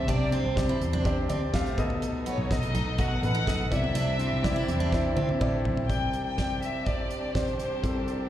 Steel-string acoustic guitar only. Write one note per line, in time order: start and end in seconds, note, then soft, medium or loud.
0.09 0.32 D4 medium
0.32 0.55 C4 medium
0.69 0.81 E4 medium
0.93 1.16 D4 medium
1.29 1.41 C4 medium
1.54 1.88 A3 medium
2.26 2.38 B3 medium
2.75 2.86 D#4 medium
2.98 3.10 F#4 medium
3.35 3.46 D#4 medium
3.95 4.18 D4 medium
4.19 4.43 C4 medium
4.56 4.68 E4 medium
4.80 5.03 D4 medium
5.17 5.28 C4 medium
5.41 5.75 A3 medium